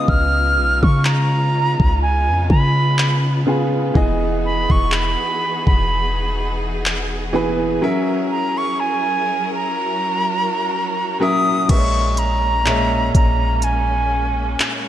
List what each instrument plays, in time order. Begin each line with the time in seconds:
Already playing: grand piano C#3 B3 F4 D#5, string section C#3 G#3 B3 D#4 F4, flute D#6
0.08 808-style bass C#2, flute F6, kick
0.57 808-style bass B1
0.83 808-style bass C#3, flute C#6, kick
1.05 flute A#5, clap
1.80 808-style bass C#2, kick
2.02 flute G#5
2.28 808-style bass F2
2.50 808-style bass C#3, flute B5, kick
2.99 clap
3.46 grand piano C#3 B3 F4 G#4
3.94 808-style bass E1, grand piano E3 B3 G#4 D#5, string section E3 D#4 F#4 G#4, kick
4.45 flute B5
4.70 808-style bass E1, flute C#6, kick
4.92 flute B5, clap
5.67 808-style bass E1, flute B5, kick
6.86 clap
7.33 grand piano E3 B3 G#4 B4
7.81 grand piano F#3 C#4 A#4 E5, string section F#3 C#4 E4 A#4
8.31 flute A#5
8.58 flute C#6
8.80 flute G#5
9.54 flute A#5
9.76 string section F#4
11.20 grand piano F#3 C#4 A#4 E5, flute D#6
11.68 808-style bass A#1, grand piano A#2 G#3 B4 E5, string section G#3 A#3 C#4, flute C#6, kick, closed hi-hat, crash
11.76 grand piano C#5
12.17 flute A#5, closed hi-hat
12.65 grand piano A#2 G#3 C#5 E5, clap
13.15 808-style bass A#1, flute A#5, kick, closed hi-hat
13.62 flute G#5, closed hi-hat
14.60 clap, closed hi-hat